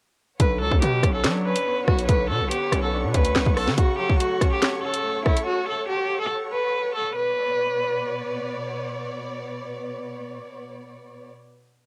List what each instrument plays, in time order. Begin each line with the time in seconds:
0.40 808-style bass B1, grand piano D3, string section B4 C#5 F#5 C#6, cello B4, kick, closed hi-hat
0.61 808-style bass C#2, grand piano F#3, cello A4
0.71 808-style bass D2, kick
0.82 808-style bass B2, grand piano B3, cello G4, closed hi-hat
1.03 808-style bass B1, grand piano C#4, kick, cross-stick, closed hi-hat
1.14 cello A4
1.24 808-style bass F#3, grand piano D4, snare, clap, closed hi-hat
1.45 grand piano C#4, cello B4
1.56 closed hi-hat
1.66 grand piano B3
1.87 808-style bass B1, cello F#4, kick, cross-stick
1.99 closed hi-hat
2.08 808-style bass B1, grand piano D3, cello B4, kick, closed hi-hat
2.30 808-style bass B2, cello A4
2.41 808-style bass B1
2.50 grand piano B3, cello G4, closed hi-hat
2.72 808-style bass B1, grand piano C#4, cross-stick, closed hi-hat
2.83 cello A4
2.94 grand piano D4
3.04 808-style bass B2
3.14 808-style bass D2, grand piano C#4, cello B4, kick, closed hi-hat
3.25 closed hi-hat
3.35 808-style bass B1, grand piano B3, snare, clap
3.46 808-style bass B1, kick
3.57 cello A4, cross-stick, open hi-hat
3.67 808-style bass D3, snare
3.78 grand piano C#3, cello F#4, string section A4 C#5, kick, closed hi-hat
3.99 grand piano F#3, cello G4
4.10 kick
4.20 grand piano A3, cello F#4, closed hi-hat
4.41 grand piano C#4, kick, cross-stick, closed hi-hat
4.52 cello G4
4.62 grand piano C#5, snare, clap, closed hi-hat
4.83 grand piano C#4, cello A4
4.94 closed hi-hat
5.04 grand piano A3
5.26 cello E4, kick, cross-stick
5.37 closed hi-hat
5.47 cello F#4
5.69 cello A4
5.89 cello G4
6.21 cello A4
6.53 cello B4
6.95 cello A4
7.16 string section B2 B3 C#5 D5, cello B4